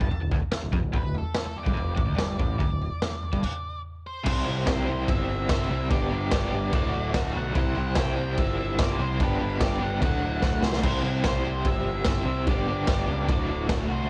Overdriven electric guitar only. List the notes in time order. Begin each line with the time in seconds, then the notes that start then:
0.11 muted overdriven electric guitar stroke
0.21 D2
0.32 D2
0.42 muted overdriven electric guitar stroke
0.53 muted overdriven electric guitar stroke
0.63 D2
0.73 F2
0.83 D2
0.93 D2
1.05 D2
1.45 muted overdriven electric guitar stroke
1.64 G2
1.74 F2
1.96 A2
2.05 D2
2.16 G2
2.39 A2
2.58 D2
2.70 D2
3.11 muted overdriven electric guitar stroke
3.33 G2
4.24 C3 G3 C4 E4 C5
4.28 G4
4.45 E4 G4 C5
4.49 C4
4.66 C4 E4 G4 C5
4.86 E4 G4 C5
4.90 C4
5.49 C3 G3 C4 E4
5.53 G4 C5
5.70 E4 G4 C5
5.74 C4
5.88 G2 D3 G3 B3 D4
5.94 G4
6.09 B3 D4 G4
6.13 G3
6.30 G3 B3 D4
6.35 G4
6.51 G3 B3 D4 G4
6.72 D2 A2 D3 A3
6.76 F#4
7.12 D2 A2 D3 A3 F#4
7.33 A3 F#4
7.38 D3
7.54 C3 G3 C4 E4
7.58 G4 C5
7.75 E4 G4 C5
7.80 C4
7.95 C4 E4 G4
8.00 C5
8.16 E4 G4 C5
8.20 C4
8.79 C3 G3 C4 E4 G4
8.84 C5
8.99 E4 G4 C5
9.04 C4
9.20 G2 D3 G3 B3 D4
9.24 G4
9.39 B3 D4 G4
9.43 G3
9.59 G3 B3 D4
9.63 G4
9.79 B3 D4 G4
9.84 G3
10.00 D2 A2 D3
10.05 A3 F#4
10.41 D2 A2 D3 A3
10.46 F#4
10.61 A3 F#4
10.66 D3
10.83 C3 G3 C4 E4 G4
10.88 C5
11.04 E4 G4 C5
11.10 C4
11.24 C4 E4
11.28 G4 C5
11.45 E4 G4 C5
11.50 C4
12.05 C3 G3 C4 E4 G4
12.11 C5
12.25 E4 G4 C5
12.30 C4
12.46 G2 D3 G3 B3
12.51 D4 G4
12.68 B3 D4 G4
12.73 G3
12.87 G3 B3 D4
12.92 G4
13.07 D4 G4
13.11 G3 B3
13.28 D2 A2 D3 A3 F#4
13.68 D2 A2 D3 A3
13.73 F#4
13.89 A3 F#4
13.93 D3
14.06 C3